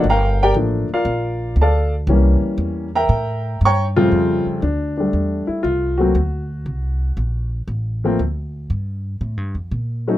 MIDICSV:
0, 0, Header, 1, 4, 480
1, 0, Start_track
1, 0, Key_signature, -1, "major"
1, 0, Tempo, 509771
1, 40, Time_signature, 4, 2, 24, 8
1, 9585, End_track
2, 0, Start_track
2, 0, Title_t, "Upright piano"
2, 0, Program_c, 0, 0
2, 90, Note_on_c, 0, 82, 101
2, 92, Note_on_c, 0, 70, 84
2, 94, Note_on_c, 0, 77, 87
2, 94, Note_on_c, 0, 79, 82
2, 384, Note_off_c, 0, 82, 0
2, 385, Note_off_c, 0, 70, 0
2, 386, Note_off_c, 0, 77, 0
2, 386, Note_off_c, 0, 79, 0
2, 403, Note_on_c, 0, 79, 108
2, 405, Note_on_c, 0, 70, 98
2, 406, Note_on_c, 0, 74, 84
2, 410, Note_on_c, 0, 67, 88
2, 484, Note_off_c, 0, 79, 0
2, 485, Note_off_c, 0, 70, 0
2, 486, Note_off_c, 0, 74, 0
2, 489, Note_off_c, 0, 67, 0
2, 522, Note_on_c, 0, 53, 56
2, 528, Note_on_c, 0, 57, 52
2, 530, Note_on_c, 0, 58, 47
2, 537, Note_on_c, 0, 62, 61
2, 816, Note_off_c, 0, 53, 0
2, 819, Note_off_c, 0, 57, 0
2, 820, Note_off_c, 0, 58, 0
2, 824, Note_off_c, 0, 62, 0
2, 882, Note_on_c, 0, 77, 87
2, 886, Note_on_c, 0, 74, 68
2, 887, Note_on_c, 0, 65, 66
2, 887, Note_on_c, 0, 70, 66
2, 1460, Note_off_c, 0, 77, 0
2, 1462, Note_off_c, 0, 65, 0
2, 1462, Note_off_c, 0, 70, 0
2, 1462, Note_off_c, 0, 74, 0
2, 1520, Note_on_c, 0, 81, 87
2, 1524, Note_on_c, 0, 74, 76
2, 1525, Note_on_c, 0, 69, 68
2, 1529, Note_on_c, 0, 77, 72
2, 1819, Note_off_c, 0, 81, 0
2, 1821, Note_off_c, 0, 69, 0
2, 1821, Note_off_c, 0, 74, 0
2, 1823, Note_off_c, 0, 77, 0
2, 1964, Note_on_c, 0, 52, 63
2, 1969, Note_on_c, 0, 55, 62
2, 1972, Note_on_c, 0, 58, 55
2, 1976, Note_on_c, 0, 61, 67
2, 2705, Note_off_c, 0, 52, 0
2, 2707, Note_off_c, 0, 55, 0
2, 2709, Note_off_c, 0, 58, 0
2, 2710, Note_off_c, 0, 61, 0
2, 2782, Note_on_c, 0, 82, 99
2, 2786, Note_on_c, 0, 76, 78
2, 2789, Note_on_c, 0, 70, 83
2, 2789, Note_on_c, 0, 79, 80
2, 3370, Note_off_c, 0, 82, 0
2, 3372, Note_off_c, 0, 76, 0
2, 3373, Note_off_c, 0, 70, 0
2, 3373, Note_off_c, 0, 79, 0
2, 3441, Note_on_c, 0, 85, 108
2, 3444, Note_on_c, 0, 82, 86
2, 3446, Note_on_c, 0, 79, 85
2, 3449, Note_on_c, 0, 73, 85
2, 3625, Note_off_c, 0, 85, 0
2, 3628, Note_off_c, 0, 82, 0
2, 3629, Note_off_c, 0, 79, 0
2, 3631, Note_off_c, 0, 73, 0
2, 3733, Note_on_c, 0, 65, 104
2, 3734, Note_on_c, 0, 41, 73
2, 3737, Note_on_c, 0, 49, 63
2, 3738, Note_on_c, 0, 55, 68
2, 3742, Note_on_c, 0, 57, 66
2, 3744, Note_on_c, 0, 60, 85
2, 4177, Note_off_c, 0, 65, 0
2, 4333, Note_off_c, 0, 41, 0
2, 4334, Note_off_c, 0, 49, 0
2, 4335, Note_off_c, 0, 55, 0
2, 4337, Note_off_c, 0, 57, 0
2, 4338, Note_off_c, 0, 60, 0
2, 4356, Note_on_c, 0, 62, 74
2, 4663, Note_off_c, 0, 62, 0
2, 4684, Note_on_c, 0, 62, 67
2, 4709, Note_on_c, 0, 55, 54
2, 4710, Note_on_c, 0, 57, 54
2, 5132, Note_off_c, 0, 62, 0
2, 5153, Note_on_c, 0, 64, 70
2, 5300, Note_on_c, 0, 65, 83
2, 5318, Note_off_c, 0, 64, 0
2, 5621, Note_off_c, 0, 55, 0
2, 5621, Note_off_c, 0, 57, 0
2, 5627, Note_on_c, 0, 66, 79
2, 5643, Note_on_c, 0, 54, 62
2, 5648, Note_off_c, 0, 65, 0
2, 5650, Note_on_c, 0, 57, 56
2, 5654, Note_on_c, 0, 58, 55
2, 5660, Note_on_c, 0, 60, 64
2, 5782, Note_off_c, 0, 54, 0
2, 5786, Note_off_c, 0, 57, 0
2, 5788, Note_off_c, 0, 58, 0
2, 5791, Note_off_c, 0, 60, 0
2, 7039, Note_off_c, 0, 66, 0
2, 7571, Note_on_c, 0, 53, 65
2, 7577, Note_on_c, 0, 57, 59
2, 7579, Note_on_c, 0, 58, 63
2, 7584, Note_on_c, 0, 60, 72
2, 7706, Note_off_c, 0, 53, 0
2, 7708, Note_off_c, 0, 57, 0
2, 7710, Note_off_c, 0, 58, 0
2, 7712, Note_off_c, 0, 60, 0
2, 9487, Note_on_c, 0, 54, 71
2, 9490, Note_on_c, 0, 57, 62
2, 9494, Note_on_c, 0, 61, 56
2, 9497, Note_on_c, 0, 63, 73
2, 9585, Note_off_c, 0, 54, 0
2, 9585, Note_off_c, 0, 57, 0
2, 9585, Note_off_c, 0, 61, 0
2, 9585, Note_off_c, 0, 63, 0
2, 9585, End_track
3, 0, Start_track
3, 0, Title_t, "Upright bass"
3, 0, Program_c, 1, 32
3, 34, Note_on_c, 1, 31, 84
3, 503, Note_off_c, 1, 31, 0
3, 511, Note_on_c, 1, 33, 87
3, 820, Note_off_c, 1, 33, 0
3, 987, Note_on_c, 1, 34, 86
3, 1459, Note_off_c, 1, 34, 0
3, 1468, Note_on_c, 1, 38, 83
3, 1939, Note_off_c, 1, 38, 0
3, 1949, Note_on_c, 1, 36, 93
3, 2259, Note_off_c, 1, 36, 0
3, 2426, Note_on_c, 1, 40, 89
3, 2899, Note_off_c, 1, 40, 0
3, 2909, Note_on_c, 1, 45, 91
3, 3380, Note_off_c, 1, 45, 0
3, 3398, Note_on_c, 1, 43, 83
3, 3865, Note_off_c, 1, 43, 0
3, 3876, Note_on_c, 1, 41, 77
3, 4183, Note_off_c, 1, 41, 0
3, 4352, Note_on_c, 1, 38, 78
3, 4822, Note_off_c, 1, 38, 0
3, 4832, Note_on_c, 1, 40, 71
3, 5140, Note_off_c, 1, 40, 0
3, 5313, Note_on_c, 1, 36, 76
3, 5782, Note_off_c, 1, 36, 0
3, 5788, Note_on_c, 1, 38, 81
3, 6259, Note_off_c, 1, 38, 0
3, 6269, Note_on_c, 1, 36, 73
3, 6739, Note_off_c, 1, 36, 0
3, 6749, Note_on_c, 1, 34, 79
3, 7220, Note_off_c, 1, 34, 0
3, 7227, Note_on_c, 1, 33, 78
3, 7698, Note_off_c, 1, 33, 0
3, 7715, Note_on_c, 1, 38, 76
3, 8182, Note_off_c, 1, 38, 0
3, 8191, Note_on_c, 1, 43, 73
3, 8659, Note_off_c, 1, 43, 0
3, 8670, Note_on_c, 1, 45, 73
3, 8826, Note_off_c, 1, 45, 0
3, 8826, Note_on_c, 1, 43, 53
3, 8983, Note_off_c, 1, 43, 0
3, 8989, Note_on_c, 1, 41, 59
3, 9142, Note_off_c, 1, 41, 0
3, 9147, Note_on_c, 1, 46, 77
3, 9585, Note_off_c, 1, 46, 0
3, 9585, End_track
4, 0, Start_track
4, 0, Title_t, "Muted upright bass strokes"
4, 838, Note_on_c, 9, 29, 45
4, 933, Note_off_c, 9, 29, 0
4, 2275, Note_on_c, 9, 29, 39
4, 2369, Note_off_c, 9, 29, 0
4, 4202, Note_on_c, 9, 29, 35
4, 4296, Note_off_c, 9, 29, 0
4, 5165, Note_on_c, 9, 29, 36
4, 5259, Note_off_c, 9, 29, 0
4, 9585, End_track
0, 0, End_of_file